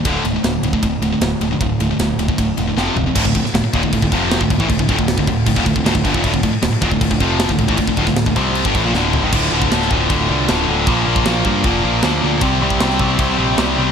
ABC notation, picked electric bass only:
X:1
M:4/4
L:1/16
Q:1/4=155
K:Dm
V:1 name="Picked electric bass" clef=bass
D,,,2 D,,,2 D,,,2 D,,,2 D,,,2 D,,,2 D,,,2 D,,,2 | D,,,2 D,,,2 D,,,2 D,,,2 D,,,2 E,,,2 F,,,2 E,,,2 | D,,, D,,, D,,, z D,,, z _E,,, D,,, D,,, D,,, F,,,3 D,,, D,,, A,,, | D,,, D,,, D,,, D,,,2 D,,, D,,,2 D,,, _E,,, D,,, D,,, D,,, D,,, G,,, E,,, |
D,,, D,,, D,,, z D,,, z _E,,, D,,, D,,, D,,, F,,,3 D,,, D,,, A,,, | D,,, D,,, D,,, D,,,2 D,,, C,,3 G,,, A,,, B,,, D,,,3 ^G,,, | D,,,2 D,,,2 D,,,2 D,,,2 D,,,2 C,,2 D,,,2 D,,,2 | B,,,2 B,,,2 B,,,2 G,,2 F,,,2 B,,,2 D,,2 D,,2 |
C,,2 C,,2 C,,2 C,,2 C,,2 B,,,2 C,,2 C,,2 |]